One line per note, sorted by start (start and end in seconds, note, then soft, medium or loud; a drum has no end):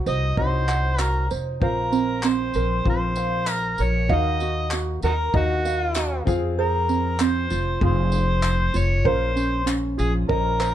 0.00 0.20 C4 medium
0.00 0.20 D#4 medium
0.00 0.21 F#4 medium
0.00 0.98 F#4 medium
0.00 0.21 D#5 medium
0.00 0.36 D#5 medium
0.00 0.67 F#5 medium
0.06 0.35 C2 loud
0.06 1.31 C5 medium
0.06 0.37 D#5 loud
0.06 tambourine medium
0.37 1.27 C2 loud
0.37 1.44 C4 medium
0.37 1.44 D#4 medium
0.37 1.44 F#4 medium
0.37 1.01 C5 loud
0.37 0.45 C#5 medium
0.37 1.62 D#5 medium
0.37 kick loud
0.47 1.48 D#5 medium
0.68 1.62 F#5 medium
0.68 clap loud
0.68 tambourine medium
0.99 1.30 F#4 medium
0.99 1.27 A#4 loud
0.99 clap loud
0.99 tambourine medium
1.31 1.60 F1 medium
1.31 1.62 C5 medium
1.31 tambourine medium
1.60 2.51 A#1 loud
1.60 2.67 C4 medium
1.60 2.67 F4 medium
1.60 2.68 A#4 medium
1.60 2.29 A#4 medium
1.60 2.86 C5 medium
1.60 3.17 F5 medium
1.60 2.68 F5 medium
1.60 kick loud
1.92 2.23 C4 medium
1.92 tambourine medium
2.23 3.48 C4 medium
2.23 clap loud
2.23 tambourine medium
2.27 2.87 C5 medium
2.54 2.84 A#1 loud
2.54 3.79 A#4 medium
2.54 tambourine medium
2.85 3.75 A#1 loud
2.85 3.91 C4 medium
2.85 3.92 F4 medium
2.85 3.92 A#4 medium
2.85 3.92 F5 medium
2.85 kick loud
2.90 3.52 C5 loud
3.16 4.09 F5 medium
3.16 tambourine medium
3.47 clap loud
3.47 tambourine medium
3.52 3.84 A#4 loud
3.78 4.08 A#1 medium
3.78 4.41 A#4 medium
3.78 tambourine medium
3.83 4.15 C#5 medium
4.09 4.99 D#2 loud
4.09 5.16 D#4 medium
4.09 5.16 F#4 medium
4.09 5.16 A#4 medium
4.09 5.33 D#5 medium
4.09 5.65 F5 medium
4.09 5.17 F5 medium
4.09 kick loud
4.14 4.74 D#5 loud
4.40 4.72 F#4 medium
4.40 tambourine medium
4.71 5.03 F#4 medium
4.71 clap loud
4.71 tambourine medium
5.02 5.31 D#2 loud
5.02 5.14 D#4 medium
5.02 5.11 F#4 medium
5.02 6.33 A#4 medium
5.02 5.33 A#4 loud
5.02 tambourine medium
5.33 6.23 D#2 loud
5.33 6.26 D#4 medium
5.33 6.27 F#4 medium
5.33 6.24 F#4 loud
5.33 6.27 A#4 medium
5.33 6.27 D#5 medium
5.33 6.26 F5 medium
5.33 kick loud
5.65 9.15 F5 medium
5.65 tambourine medium
5.94 6.27 F#4 medium
5.94 clap loud
5.94 tambourine medium
6.25 7.47 F2 medium
6.25 7.32 C4 medium
6.25 7.32 F4 medium
6.25 7.33 G#4 medium
6.25 6.57 G#4 medium
6.25 7.33 F5 loud
6.25 kick loud
6.25 tambourine medium
6.59 7.80 G#4 medium
6.59 7.23 A#4 medium
6.59 9.05 C5 medium
6.89 7.20 C4 medium
6.89 tambourine medium
7.19 7.50 C4 medium
7.19 7.82 C5 medium
7.19 clap loud
7.19 tambourine medium
7.50 7.79 F1 medium
7.50 8.73 F4 medium
7.50 tambourine medium
7.80 8.70 F1 loud
7.80 8.87 C4 medium
7.80 8.87 F4 medium
7.80 9.05 G#4 medium
7.80 8.88 G#4 medium
7.80 8.88 F5 medium
7.80 kick loud
7.85 8.79 C5 loud
8.12 tambourine medium
8.43 clap loud
8.43 tambourine medium
8.74 9.06 F1 medium
8.74 9.35 F4 medium
8.74 9.09 C#5 loud
8.74 tambourine medium
9.05 9.94 A#1 loud
9.05 10.11 C#4 medium
9.05 9.97 A#4 medium
9.05 10.11 A#4 medium
9.05 10.12 C5 medium
9.05 10.60 C5 medium
9.05 9.68 C5 loud
9.05 10.12 F5 medium
9.05 kick loud
9.36 9.65 C#4 medium
9.36 tambourine medium
9.66 10.74 C#4 medium
9.66 clap loud
9.66 tambourine medium
9.97 10.27 A#1 loud
9.97 10.74 F4 medium
9.97 10.13 G#4 medium
9.97 tambourine medium
10.29 10.74 A#1 loud
10.29 10.74 C#4 medium
10.29 10.74 A#4 medium
10.29 10.74 A#4 loud
10.29 10.74 C5 medium
10.29 10.74 D#5 medium
10.29 kick loud
10.60 10.74 C5 medium
10.60 clap loud
10.60 tambourine medium